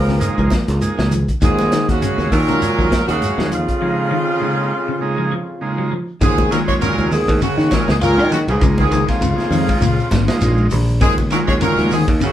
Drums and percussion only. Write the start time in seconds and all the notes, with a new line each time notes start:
0.07 snare, high conga, shekere
0.20 closed hi-hat, high conga, shekere
0.38 kick, shekere
0.50 kick, snare, closed hi-hat, high conga, shekere
0.68 snare, closed hi-hat, shekere
0.81 closed hi-hat, high conga, shekere
0.98 snare, shekere
1.11 closed hi-hat, low conga, shekere
1.28 kick, closed hi-hat, shekere
1.41 kick, closed hi-hat, high conga, shekere
1.58 snare, high conga, shekere
1.72 snare, closed hi-hat, shekere
1.89 kick, snare, closed hi-hat, shekere
2.02 closed hi-hat, high conga, shekere
2.19 snare, high conga, shekere
2.32 kick, snare, open hi-hat, low conga, shekere
2.48 closed hi-hat, high conga, shekere
2.62 closed hi-hat, high conga, shekere
2.78 kick, shekere
2.92 kick, snare, closed hi-hat, high conga, shekere
3.09 closed hi-hat, shekere
3.22 closed hi-hat, high conga, shekere
3.39 snare, high conga, shekere
3.52 closed hi-hat, low conga, shekere
3.68 kick, closed hi-hat, shekere
6.21 kick, ride bell, shekere
6.38 kick, high conga, shekere
6.52 snare, ride bell, shekere
6.68 kick, snare, shekere
6.81 ride bell, high conga, shekere
6.98 high conga, shekere
7.11 open hi-hat, low conga, shekere
7.28 kick, ride bell, high conga, shekere
7.41 ride bell, high conga, shekere
7.59 snare, shekere
7.71 kick, snare, ride bell, high conga, shekere
7.88 snare, low conga, shekere
8.01 ride bell, high conga, shekere
8.17 high conga, shekere
8.31 snare, ride bell, low conga, shekere
8.48 ride bell, shekere
8.61 kick, ride bell, high conga, shekere
8.78 kick, high conga, shekere
8.92 snare, ride bell, shekere
9.08 kick, snare, ride bell, shekere
9.22 ride bell, high conga, shekere
9.38 snare, high conga, shekere
9.51 open hi-hat, low conga, shekere
9.68 kick, ride bell, high conga, shekere
9.81 ride bell, shekere
9.99 shekere
10.11 kick, snare, ride bell, high conga, shekere
10.28 snare, ride bell, shekere
10.41 snare, ride bell, high conga, shekere
10.57 high conga, shekere
10.70 open hi-hat, low conga, shekere
10.88 shekere
11.01 kick, ride bell, shekere
11.18 kick, high conga, shekere
11.30 snare, ride bell, shekere
11.48 kick, snare, shekere
11.61 ride bell, shekere
11.78 snare, high conga, shekere
11.91 open hi-hat, low conga, shekere
12.08 kick, ride bell, shekere
12.21 ride bell, high conga, shekere